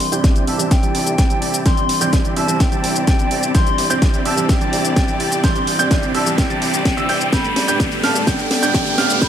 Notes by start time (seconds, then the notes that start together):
Already playing: E3 G3 C4 D4 E4 G4 D5 C6, riser
0.00 C2, open hi-hat
0.12 E3 G3 C4 D4 E4 G4 D5 G5 G6, closed hi-hat, shaker
0.24 kick, snare, closed hi-hat, shaker
0.36 closed hi-hat, shaker
0.47 G1 C4 E4 G4 D5 E5 A5 E6, open hi-hat
0.58 E3 G3 C4 D4, closed hi-hat, shaker
0.71 G5, kick, snare, closed hi-hat, shaker
0.83 C4 E4 G4 D5 A5 A6, closed hi-hat, shaker
0.95 C2, open hi-hat
1.07 C2, closed hi-hat, shaker
1.18 C4 E4 G4 D5 A5 A6, kick, snare, closed hi-hat, shaker
1.30 closed hi-hat, shaker
1.42 C2, open hi-hat
1.54 closed hi-hat, shaker
1.65 E3 G3 C4 D4 E4 G4 D5 G5 C6 G6, kick, snare, closed hi-hat, shaker
1.77 closed hi-hat, shaker
1.89 C2, open hi-hat
2.01 E3 G3 C4 D4 E4 G4 D5 G5 G6, closed hi-hat, shaker
2.13 kick, snare, closed hi-hat, shaker
2.25 closed hi-hat, shaker
2.37 G1 C4 E4 G4 D5 E5 A5 E6, open hi-hat
2.47 E3 G3 C4 D4, closed hi-hat, shaker
2.60 G5, kick, snare, closed hi-hat, shaker
2.72 C4 E4 G4 D5 A5 A6, closed hi-hat, shaker
2.84 C2, open hi-hat
2.96 C2, closed hi-hat, shaker
3.07 C4 E4 G4 D5 A5 A6, kick, snare, closed hi-hat, shaker
3.19 closed hi-hat, shaker
3.31 C2, open hi-hat
3.43 closed hi-hat, shaker
3.54 E3 G3 C4 D4 E4 G4 D5 G5 C6 G6, kick, snare, closed hi-hat, shaker
3.66 closed hi-hat, shaker
3.78 C2, open hi-hat
3.89 E3 G3 C4 D4 E4 G4 D5 G5 G6, closed hi-hat, shaker
4.02 kick, snare, closed hi-hat, shaker
4.14 closed hi-hat, shaker
4.25 G1 C4 E4 G4 D5 E5 A5 E6, open hi-hat
4.36 E3 G3 C4 D4, closed hi-hat, shaker
4.42 A5
4.49 G5, kick, snare, closed hi-hat, shaker
4.61 C4 E4 G4 D5 A5 A6, closed hi-hat, shaker
4.73 C2, open hi-hat
4.85 C2, closed hi-hat, shaker
4.96 C4 E4 G4 D5 A5 A6, kick, snare, closed hi-hat, shaker
5.08 closed hi-hat, shaker
5.20 C2, open hi-hat
5.32 closed hi-hat, shaker
5.43 E3 G3 C4 D4 E4 G4 D5 G5 C6 G6, kick, snare, closed hi-hat, shaker
5.55 closed hi-hat, shaker
5.67 C2, open hi-hat
5.79 E3 G3 C4 D4 E4 G4 D5 G5 G6, shaker
5.91 kick, snare, closed hi-hat, shaker
6.03 closed hi-hat, shaker
6.15 G1 C4 E4 G4 D5 E5 A5 E6, open hi-hat
6.25 E3 G3 C4 D4, closed hi-hat, shaker
6.38 G5, kick, snare, closed hi-hat, shaker
6.50 C4 E4 G4 D5 A5 A6, closed hi-hat, shaker
6.62 C2, open hi-hat
6.74 C2, closed hi-hat, shaker
6.85 kick, snare, closed hi-hat, shaker
6.97 C4 E4 G4 D5 E5 E6, closed hi-hat, shaker
7.09 G1 C4 E4 G4 D5 G5 G6, open hi-hat
7.21 closed hi-hat, shaker
7.32 G3 A3 B3 D4 G4 A4 B4 G5 B5 G6, kick, snare, closed hi-hat, shaker
7.44 closed hi-hat, shaker
7.56 G1, snare, open hi-hat
7.67 G3 A3 B3 D4 G4 B4 G5 G6, closed hi-hat, shaker
7.80 kick, snare, closed hi-hat, shaker
7.92 closed hi-hat, shaker
8.03 F1 A3 D4 G4 B4 F5 A5 F6, snare, open hi-hat
8.14 G3 A3 B3 D4, closed hi-hat, shaker
8.27 A3 D4 G4 B4 G5 G6, kick, snare, closed hi-hat, shaker
8.39 closed hi-hat, shaker
8.51 G1, snare, open hi-hat
8.62 G1 G3 A3 B3 D4 G4 B4 G5 G6, closed hi-hat, shaker
8.74 kick, snare, closed hi-hat, shaker
8.86 closed hi-hat, shaker
8.98 G1 A3 D4 G4 B4 F5 F6, snare, open hi-hat
9.09 G3 A3 B3 D4, closed hi-hat, shaker
9.21 G3 A3 B3 D4 G4 B4 G5 B5 G6, kick, snare, closed hi-hat, shaker